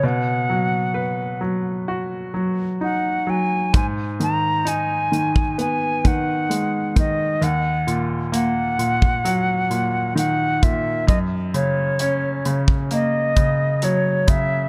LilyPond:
<<
  \new Staff \with { instrumentName = "Flute" } { \time 4/4 \key gis \minor \tempo 4 = 65 fis''4. r4. fis''8 gis''8 | gis''8 ais''8 gis''4 gis''8 fis''4 dis''8 | fis''8 r8 fis''2 fis''8 e''8 | dis''8 cis''4 r8 dis''4 cis''8 e''8 | }
  \new Staff \with { instrumentName = "Grand piano" } { \clef bass \time 4/4 \key gis \minor b,8 fis8 b'8 fis8 fis'8 fis8 dis'8 fis8 | gis,8 dis8 dis'8 dis8 b8 dis8 gis8 dis8 | dis,8 ais,8 ais8 ais,8 fis8 ais,8 dis8 ais,8 | fis,8 cis8 cis'8 cis8 ais8 cis8 fis8 cis8 | }
  \new DrumStaff \with { instrumentName = "Drums" } \drummode { \time 4/4 r4 r4 r4 r4 | <hh bd>8 hh8 hh8 hh16 bd16 hh8 <hh bd>8 hh8 <hh bd>8 | hh8 hh8 hh8 hh16 bd16 hh8 hh8 hh8 <hh bd>8 | <hh bd>8 hh8 hh8 hh16 bd16 hh8 <hh bd>8 hh8 <hh bd>8 | }
>>